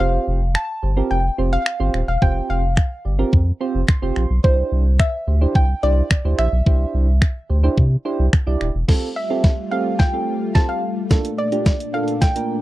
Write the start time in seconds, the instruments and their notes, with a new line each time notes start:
0.00 sub bass F1, synth keys C4 F4 G4 C5, synth pluck F5
0.28 sub bass F1
0.55 synth pluck A5, finger snap
0.83 sub bass G1, synth keys G4 C5
0.97 synth keys C4 F4 G4 A#4
1.11 sub bass F1, synth pluck G5
1.38 sub bass F1, synth keys C4 F4 G4 C5
1.53 synth pluck F5
1.66 finger snap
1.80 sub bass G1, synth keys C4 F4 G4 C5
1.94 sub bass D#1, finger snap
2.08 sub bass E1, synth pluck F5
2.22 sub bass F1, synth keys C4 F4 G4 C5, synth pluck G5, kick
2.50 sub bass F1, synth pluck F5
2.77 finger snap, kick
3.05 sub bass G1, synth keys G4 D5
3.19 synth keys C4 F4 G4 A#4
3.33 sub bass F2, kick
3.61 synth keys C4 F4 G4 C5
3.75 sub bass F1
3.88 synth keys C6, finger snap, kick
4.02 sub bass F1, synth keys C4 F4 G4 C5
4.16 sub bass A#1, finger snap
4.30 sub bass B1
4.44 sub bass C2, synth keys D4 E4 G4 C5, synth pluck C5, kick
4.72 sub bass C2
4.99 synth pluck E5, finger snap, kick
5.27 sub bass D2, synth keys G4 C5
5.41 synth keys D4 E4 G4 C5
5.55 sub bass C2, synth pluck G5, kick
5.83 sub bass C2, synth keys D4 E4 G4 C5, synth pluck D5
6.11 finger snap, kick
6.25 sub bass D2, synth keys D4 E4 G4 C5
6.39 sub bass A#1, synth pluck E5, finger snap
6.53 sub bass B1
6.66 sub bass C2, synth keys D4 E4 G4 C5, kick
6.94 sub bass C2
7.22 finger snap, kick
7.49 sub bass D2, synth keys G4 C5
7.63 synth keys D4 E4 G4 C5
7.78 sub bass C3, kick
8.05 synth keys D4 E4 G4 C5
8.19 sub bass C2
8.33 finger snap, kick
8.47 sub bass C2, synth keys D4 E4 G4 D5
8.61 sub bass D#1, finger snap
8.75 sub bass E1
8.88 analog synth pad G3 A3 F4, synth keys C4 F4 G4 A4, kick, snare, crash
9.16 synth pluck E5
9.30 synth keys C4 F4 G4 A4
9.44 kick, snare
9.71 synth keys C4 F4 G4 A4, synth pluck F5
9.99 synth pluck G5, kick, snare
10.13 synth keys C4 F4 G4 A4
10.55 synth keys C4 F4 G4 C5, synth pluck A5, kick, snare
10.69 synth pluck F5
11.10 analog synth pad A#2 D4, synth keys A#3 D4 F4 A4, kick, snare, closed hi-hat
11.25 closed hi-hat
11.38 synth pluck D5
11.52 synth keys A#3 D4 F4 G4, closed hi-hat
11.66 kick, snare, closed hi-hat
11.80 closed hi-hat
11.94 synth keys A#3 D4 F4 A4, synth pluck F5
12.08 closed hi-hat
12.21 synth pluck G5, kick, snare, closed hi-hat
12.35 synth keys A#3 D4 F4 A#4, closed hi-hat